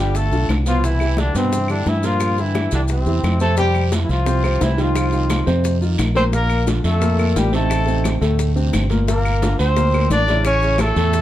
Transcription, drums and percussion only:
0.15 high bongo medium
0.15 high conga soft
0.15 long guiro medium
0.15 maracas medium
0.32 high bongo soft
0.32 high conga soft
0.32 maracas soft
0.49 high bongo soft
0.49 low bongo medium
0.49 high conga medium
0.49 short guiro medium
0.49 claves medium
0.49 maracas soft
0.66 high bongo soft
0.66 high conga soft
0.66 short guiro medium
0.66 maracas medium
0.84 high bongo medium
0.84 high conga soft
0.84 long guiro medium
0.84 maracas medium
1.00 high bongo soft
1.00 high conga soft
1.00 claves medium
1.00 maracas soft
1.17 high bongo medium
1.17 high conga medium
1.17 short guiro medium
1.17 maracas soft
1.34 high conga soft
1.34 short guiro medium
1.34 maracas medium
1.52 high bongo medium
1.52 high conga soft
1.52 long guiro medium
1.52 maracas medium
1.68 high bongo soft
1.68 high conga soft
1.68 claves medium
1.68 maracas soft
1.86 high bongo soft
1.86 low bongo medium
1.86 high conga medium
1.86 short guiro medium
1.86 maracas soft
2.03 high bongo soft
2.03 high conga soft
2.03 short guiro medium
2.03 maracas medium
2.20 high bongo medium
2.20 high conga soft
2.20 long guiro medium
2.20 claves medium
2.20 maracas medium
2.37 high bongo soft
2.37 high conga soft
2.37 maracas soft
2.54 high bongo medium
2.54 high conga medium
2.54 short guiro medium
2.54 claves medium
2.54 maracas soft
2.71 high conga soft
2.71 short guiro medium
2.71 maracas medium
2.88 high bongo medium
2.88 high conga soft
2.88 long guiro medium
2.88 maracas medium
3.06 high bongo soft
3.06 high conga soft
3.06 maracas soft
3.24 high bongo soft
3.24 low bongo medium
3.24 high conga medium
3.24 short guiro medium
3.24 claves medium
3.24 maracas soft
3.40 high bongo soft
3.40 high conga soft
3.40 short guiro medium
3.40 maracas medium
3.57 high bongo medium
3.57 high conga soft
3.57 long guiro medium
3.57 maracas medium
3.75 high bongo soft
3.75 high conga soft
3.75 claves medium
3.75 maracas soft
3.92 high bongo medium
3.92 high conga medium
3.92 short guiro medium
3.92 maracas medium
4.09 high bongo soft
4.09 high conga soft
4.09 short guiro medium
4.09 maracas soft
4.26 high bongo medium
4.26 high conga soft
4.26 long guiro medium
4.26 maracas medium
4.44 high conga soft
4.44 claves medium
4.44 maracas soft
4.61 high bongo soft
4.61 low bongo medium
4.61 high conga medium
4.61 short guiro medium
4.61 maracas medium
4.78 high bongo soft
4.78 short guiro medium
4.78 maracas soft
4.95 high bongo medium
4.95 high conga soft
4.95 long guiro medium
4.95 claves medium
4.95 maracas medium
5.12 high bongo soft
5.12 high conga soft
5.12 maracas soft
5.30 high bongo medium
5.30 high conga medium
5.30 short guiro medium
5.30 claves medium
5.30 maracas medium
5.47 high bongo soft
5.47 high conga soft
5.47 short guiro medium
5.47 maracas soft
5.64 high bongo medium
5.64 high conga soft
5.64 long guiro medium
5.64 maracas medium
5.82 high conga soft
5.82 maracas soft
5.98 high bongo soft
5.98 low bongo medium
5.98 high conga medium
5.98 short guiro medium
5.98 claves medium
5.98 maracas medium
6.16 high bongo soft
6.16 high conga medium
6.16 short guiro medium
6.16 maracas soft
6.33 high bongo medium
6.33 high conga soft
6.33 long guiro medium
6.33 maracas medium
6.50 high bongo soft
6.50 high conga soft
6.50 claves medium
6.50 maracas soft
6.67 high bongo medium
6.67 high conga medium
6.67 short guiro medium
6.67 maracas medium
6.84 high bongo soft
6.84 high conga soft
6.84 short guiro medium
6.84 maracas soft
7.02 high bongo medium
7.02 long guiro medium
7.02 maracas medium
7.19 high conga soft
7.19 claves medium
7.19 maracas soft
7.36 high bongo soft
7.36 low bongo medium
7.36 high conga medium
7.36 short guiro medium
7.36 maracas medium
7.53 high bongo soft
7.53 short guiro medium
7.53 maracas soft
7.70 high bongo medium
7.70 long guiro medium
7.70 claves medium
7.70 maracas medium
7.88 high bongo soft
7.88 high conga soft
7.88 maracas soft
8.04 high bongo medium
8.04 high conga medium
8.04 short guiro medium
8.04 claves medium
8.04 maracas medium
8.22 high bongo soft
8.22 high conga soft
8.22 short guiro medium
8.22 maracas soft
8.39 high bongo medium
8.39 high conga soft
8.39 long guiro medium
8.39 maracas medium
8.56 high conga soft
8.56 maracas soft
8.73 high bongo soft
8.73 low bongo medium
8.73 high conga medium
8.73 short guiro medium
8.73 claves medium
8.73 maracas medium
8.90 high bongo soft
8.90 high conga medium
8.90 short guiro medium
8.90 maracas soft
9.07 high bongo medium
9.07 high conga soft
9.07 long guiro medium
9.07 maracas medium
9.25 high bongo soft
9.25 high conga soft
9.25 claves medium
9.25 maracas soft
9.42 high bongo medium
9.42 high conga medium
9.42 short guiro medium
9.42 maracas medium
9.59 high bongo soft
9.59 high conga soft
9.59 short guiro medium
9.59 maracas soft
9.77 high bongo medium
9.77 high conga soft
9.77 long guiro medium
9.77 maracas medium
9.93 high conga soft
9.93 claves medium
9.93 maracas soft
10.10 high bongo soft
10.10 low bongo medium
10.10 high conga medium
10.10 short guiro medium
10.10 maracas medium
10.28 high bongo soft
10.28 high conga medium
10.28 short guiro medium
10.28 maracas soft
10.45 high bongo medium
10.45 high conga soft
10.45 long guiro medium
10.45 claves medium
10.45 maracas medium
10.62 high bongo soft
10.62 high conga soft
10.62 maracas soft
10.78 high bongo medium
10.78 high conga medium
10.78 short guiro medium
10.78 claves medium
10.78 maracas medium
10.96 high bongo soft
10.96 high conga soft
10.96 short guiro medium
10.96 maracas soft
11.13 high bongo medium
11.13 high conga soft
11.13 long guiro medium
11.13 maracas medium

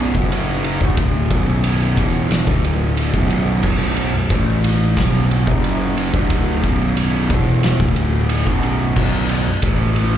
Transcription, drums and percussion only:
0.15 kick loud
0.32 ride loud
0.64 ride medium
0.81 kick loud
0.97 kick loud
0.97 ride loud
1.30 kick loud
1.30 ride medium
1.64 ride loud
1.97 kick loud
1.97 ride medium
2.31 snare loud
2.31 ride loud
2.47 kick loud
2.64 ride medium
2.97 ride medium
3.14 kick loud
3.30 ride medium
3.63 kick loud
3.63 crash loud
3.81 snare soft
3.96 ride medium
4.30 kick loud
4.30 ride loud
4.64 ride medium
4.97 kick loud
4.97 snare loud
4.97 ride loud
5.31 ride medium
5.47 kick loud
5.64 ride loud
5.97 ride medium
6.14 kick loud
6.30 kick loud
6.30 ride loud
6.63 kick loud
6.63 ride medium
6.97 ride loud
7.30 kick loud
7.30 ride medium
7.63 snare loud
7.63 ride loud
7.80 kick loud
7.96 ride medium
8.29 ride loud
8.47 kick loud
8.63 ride medium
8.96 kick loud
8.96 crash medium
9.29 ride medium
9.62 kick loud
9.62 ride loud
9.96 ride medium

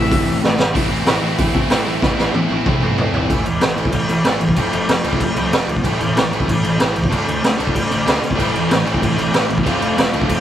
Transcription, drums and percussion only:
0.11 kick loud
0.11 open hi-hat medium
0.44 snare medium
0.59 snare loud
0.75 kick loud
0.75 open hi-hat medium
1.06 snare loud
1.06 open hi-hat medium
1.38 kick loud
1.38 open hi-hat medium
1.55 kick medium
1.70 snare loud
1.70 open hi-hat medium
2.02 kick loud
2.02 snare medium
2.18 snare medium
2.34 high tom medium
2.50 high tom medium
2.66 kick loud
2.66 mid tom medium
2.82 mid tom medium
2.98 floor tom loud
3.14 floor tom medium
3.30 kick loud
3.30 crash medium
3.46 crash medium
3.61 snare loud
3.61 crash medium
3.78 crash medium
3.85 kick medium
3.92 kick medium
3.92 crash medium
4.09 crash medium
4.25 snare loud
4.25 crash medium
4.41 crash medium
4.49 kick medium
4.56 kick medium
4.56 crash medium
4.73 crash medium
4.89 snare loud
4.89 crash medium
5.04 crash medium
5.13 kick medium
5.20 kick medium
5.20 crash medium
5.37 crash medium
5.53 snare loud
5.53 crash medium
5.69 crash medium
5.76 kick medium
5.84 kick medium
5.84 crash medium
6.00 crash medium
6.17 snare loud
6.17 crash medium
6.33 crash medium
6.40 kick medium
6.48 kick medium
6.48 crash medium
6.64 crash medium
6.80 snare loud
6.80 crash medium
6.96 crash medium
7.04 kick medium
7.12 kick loud
7.12 crash medium
7.28 crash medium
7.44 snare loud
7.44 crash medium
7.60 crash medium
7.67 kick medium
7.75 kick medium
7.75 crash medium
7.92 crash medium
8.08 snare loud
8.08 crash medium
8.23 crash medium
8.31 kick medium
8.39 kick medium
8.39 crash medium
8.55 crash medium
8.71 snare loud
8.71 crash medium
8.87 crash medium
8.94 kick medium
9.02 kick loud
9.02 crash medium
9.18 crash medium
9.34 snare loud
9.34 crash medium
9.50 crash medium
9.58 kick medium
9.66 kick loud
9.66 crash medium
9.82 crash medium
9.98 snare loud
9.98 crash medium
10.14 crash medium
10.22 kick medium
10.29 kick medium
10.29 crash medium

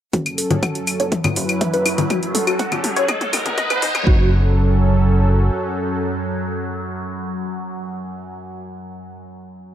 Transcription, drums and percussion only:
0.13 kick loud
0.13 closed hi-hat medium
0.13 mid tom soft
0.26 closed hi-hat soft
0.26 claves soft
0.38 open hi-hat loud
0.51 closed hi-hat soft
0.51 low conga medium
0.63 kick loud
0.63 closed hi-hat medium
0.63 mid tom soft
0.63 claves medium
0.75 closed hi-hat soft
0.87 open hi-hat loud
0.87 claves soft
1.00 closed hi-hat soft
1.12 kick loud
1.12 closed hi-hat medium
1.12 mid tom medium
1.24 closed hi-hat soft
1.24 low conga medium
1.24 claves medium
1.36 open hi-hat loud
1.49 closed hi-hat soft
1.49 claves soft
1.61 kick loud
1.61 closed hi-hat medium
1.61 mid tom medium
1.74 closed hi-hat soft
1.86 open hi-hat loud
1.86 claves medium
1.98 closed hi-hat soft
1.98 low conga medium
2.10 kick loud
2.10 closed hi-hat medium
2.10 mid tom medium
2.10 claves soft
2.23 closed hi-hat soft
2.35 open hi-hat loud
2.35 mid tom medium
2.47 closed hi-hat soft
2.47 claves medium
2.59 kick loud
2.59 closed hi-hat medium
2.59 mid tom medium
2.72 closed hi-hat soft
2.72 low conga medium
2.72 claves medium
2.84 open hi-hat loud
2.84 mid tom medium
2.96 closed hi-hat soft
3.08 kick loud
3.08 closed hi-hat medium
3.08 mid tom medium
3.08 claves medium
3.21 closed hi-hat soft
3.21 mid tom medium
3.33 open hi-hat loud
3.33 mid tom medium
3.33 claves medium
3.46 closed hi-hat soft
3.46 mid tom medium
3.46 low conga medium
3.58 kick loud
3.58 closed hi-hat medium
3.58 mid tom loud
3.70 closed hi-hat soft
3.70 mid tom medium
3.70 claves medium
3.82 open hi-hat loud
3.82 mid tom loud
3.95 closed hi-hat soft
3.95 mid tom loud
3.95 claves medium
4.07 kick loud

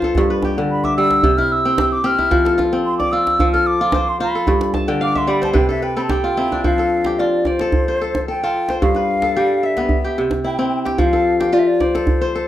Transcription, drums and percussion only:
0.02 djembe tone medium
0.15 djembe slap soft
0.15 djembe bass medium
0.42 djembe slap soft
0.42 djembe tone medium
0.84 djembe tone soft
1.10 djembe slap medium
1.23 djembe bass medium
1.38 djembe tone medium
1.78 djembe slap medium
1.78 djembe tone medium
2.19 djembe tone medium
2.32 djembe slap soft
2.32 djembe bass medium
2.46 djembe slap medium
2.59 djembe slap soft
2.59 djembe tone medium
3.00 djembe tone medium
3.27 djembe slap medium
3.39 djembe bass medium
3.54 djembe tone medium
3.92 djembe slap medium
3.92 djembe tone medium
4.47 djembe bass medium
4.61 djembe slap medium
4.74 djembe tone medium
4.87 djembe slap soft
5.01 djembe slap soft
5.15 djembe tone soft
5.43 djembe slap medium
5.55 djembe bass medium
5.70 djembe tone medium
6.09 djembe slap medium
6.09 djembe tone medium
6.52 djembe slap soft
6.52 djembe tone soft
6.64 djembe bass medium
6.78 djembe tone medium
7.05 djembe slap medium
7.45 djembe tone medium
7.59 djembe slap medium
7.72 djembe bass medium
8.00 djembe slap soft
8.15 djembe slap soft
8.15 djembe tone medium
8.69 djembe slap medium
8.82 djembe bass medium
8.95 djembe tone medium
9.22 djembe slap medium
9.77 djembe slap medium
9.89 djembe bass medium
10.17 djembe slap soft
10.31 djembe slap soft
10.31 djembe tone soft
10.86 djembe slap soft
10.99 djembe bass medium
11.13 djembe tone medium
11.41 djembe slap medium
11.81 djembe tone medium
11.95 djembe slap medium
12.07 djembe bass medium
12.35 djembe slap soft

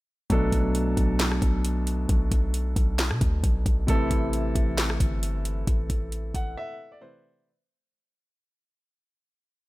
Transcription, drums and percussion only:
0.30 kick loud
0.30 closed hi-hat medium
0.52 kick medium
0.52 closed hi-hat medium
0.75 closed hi-hat medium
0.97 kick loud
0.97 closed hi-hat medium
1.19 snare loud
1.19 clap loud
1.19 closed hi-hat loud
1.32 cross-stick loud
1.42 kick loud
1.42 closed hi-hat medium
1.65 closed hi-hat medium
1.87 closed hi-hat medium
2.09 kick loud
2.09 closed hi-hat medium
2.32 kick medium
2.32 closed hi-hat medium
2.54 closed hi-hat medium
2.76 kick loud
2.76 closed hi-hat medium
2.99 snare loud
2.99 clap loud
2.99 closed hi-hat medium
3.11 cross-stick loud
3.21 kick loud
3.21 closed hi-hat medium
3.44 kick loud
3.44 closed hi-hat medium
3.66 kick loud
3.66 closed hi-hat medium
3.88 kick loud
3.88 closed hi-hat medium
4.11 kick medium
4.11 closed hi-hat medium
4.33 closed hi-hat medium
4.55 kick loud
4.55 closed hi-hat medium
4.78 snare loud
4.78 clap loud
4.78 closed hi-hat loud
4.90 cross-stick loud
5.00 kick medium
5.00 closed hi-hat medium
5.23 closed hi-hat medium
5.45 closed hi-hat medium
5.67 kick loud
5.67 closed hi-hat medium
5.90 kick medium
5.90 closed hi-hat medium
6.12 closed hi-hat medium
6.34 kick loud
6.34 closed hi-hat medium

